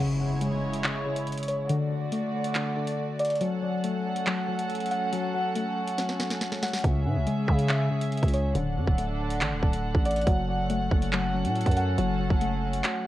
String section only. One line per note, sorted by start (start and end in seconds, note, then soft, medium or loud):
0.00 1.68 C#3 medium
0.00 1.68 G#3 medium
0.00 1.68 E4 medium
0.00 1.68 C#5 medium
1.70 3.39 D3 medium
1.70 3.39 A3 medium
1.70 3.39 F#4 medium
1.70 3.39 D5 medium
3.41 6.81 F#3 medium
3.41 8.51 C#4 medium
3.41 6.81 A4 medium
3.41 6.81 F#5 medium
6.84 8.54 C#3 medium
6.84 8.54 G#4 medium
6.84 8.54 E5 medium
8.55 10.25 D3 medium
8.55 10.25 D4 medium
8.55 10.25 A4 medium
8.55 13.07 F#5 medium
10.27 13.07 F#3 medium
10.27 13.07 C#4 medium
10.27 13.07 A4 medium